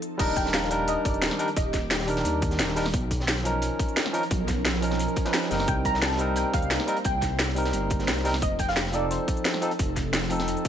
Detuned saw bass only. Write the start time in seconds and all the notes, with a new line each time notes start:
0.19 D#1
1.05 G1
1.14 D#1
1.57 D#1
2.25 D#2
2.59 D#1
2.94 B1
4.31 B1
5.51 F#1
5.68 C2
6.54 D#2
6.63 C2
7.05 C2
7.73 G1
8.08 C2
8.42 F1
9.79 F1